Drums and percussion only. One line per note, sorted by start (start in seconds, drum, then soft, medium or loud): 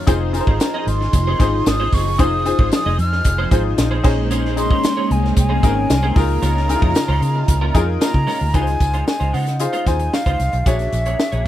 0.07 kick loud
0.07 closed hi-hat loud
0.07 tambourine medium
0.34 closed hi-hat medium
0.34 tambourine soft
0.47 kick medium
0.60 snare loud
0.60 closed hi-hat medium
0.60 tambourine medium
0.88 closed hi-hat medium
0.88 tambourine soft
1.01 snare soft
1.13 kick medium
1.13 closed hi-hat medium
1.13 tambourine soft
1.40 kick medium
1.40 snare soft
1.40 closed hi-hat medium
1.40 tambourine soft
1.66 snare loud
1.66 closed hi-hat medium
1.66 tambourine medium
1.92 kick medium
1.92 open hi-hat medium
1.92 tambourine soft
2.19 kick loud
2.19 closed hi-hat medium
2.19 tambourine medium
2.46 closed hi-hat medium
2.46 tambourine medium
2.59 kick medium
2.72 snare loud
2.72 closed hi-hat medium
2.72 tambourine medium
2.99 closed hi-hat medium
2.99 tambourine soft
3.12 snare soft
3.25 kick medium
3.25 closed hi-hat medium
3.51 kick medium
3.51 closed hi-hat medium
3.51 tambourine soft
3.78 snare loud
3.78 closed hi-hat loud
3.78 tambourine medium
4.04 kick loud
4.04 tambourine soft
4.04 crash medium
4.31 closed hi-hat loud
4.31 tambourine medium
4.45 snare soft
4.57 closed hi-hat medium
4.57 tambourine soft
4.71 kick medium
4.84 snare loud
4.84 closed hi-hat medium
4.84 tambourine medium
5.11 closed hi-hat medium
5.25 snare soft
5.37 kick medium
5.37 closed hi-hat medium
5.37 tambourine soft
5.63 kick loud
5.63 closed hi-hat medium
5.63 tambourine soft
5.90 snare loud
5.90 closed hi-hat medium
5.90 tambourine medium
6.16 kick loud
6.16 open hi-hat medium
6.16 tambourine soft
6.42 closed hi-hat loud
6.42 tambourine medium
6.57 snare soft
6.69 closed hi-hat medium
6.69 tambourine medium
6.82 kick medium
6.95 snare loud
6.95 closed hi-hat medium
6.95 tambourine medium
7.22 closed hi-hat medium
7.22 tambourine soft
7.48 kick medium
7.48 closed hi-hat medium
7.48 tambourine soft
7.75 kick medium
7.75 closed hi-hat medium
7.75 tambourine soft
8.01 snare loud
8.01 closed hi-hat loud
8.01 tambourine medium
8.14 kick medium
8.28 open hi-hat medium
8.28 tambourine soft
8.54 kick loud
8.54 closed hi-hat medium
8.54 tambourine soft
8.67 snare soft
8.67 closed hi-hat medium
8.80 kick medium
8.80 closed hi-hat medium
8.80 tambourine soft
8.93 closed hi-hat soft
9.08 snare loud
9.08 tambourine medium
9.21 closed hi-hat soft
9.34 open hi-hat medium
9.34 tambourine soft
9.47 snare soft
9.47 closed hi-hat medium
9.59 closed hi-hat medium
9.59 tambourine soft
9.73 closed hi-hat soft
9.87 kick medium
9.87 snare soft
9.87 closed hi-hat medium
9.87 tambourine soft
9.99 closed hi-hat soft
10.13 snare medium
10.13 tambourine medium
10.26 kick medium
10.26 closed hi-hat soft
10.40 closed hi-hat medium
10.40 tambourine soft
10.53 closed hi-hat soft
10.66 kick loud
10.66 closed hi-hat medium
10.66 tambourine soft
10.79 snare soft
10.79 closed hi-hat soft
10.93 closed hi-hat medium
10.93 tambourine soft
11.06 closed hi-hat soft
11.20 snare loud
11.20 tambourine medium
11.32 closed hi-hat soft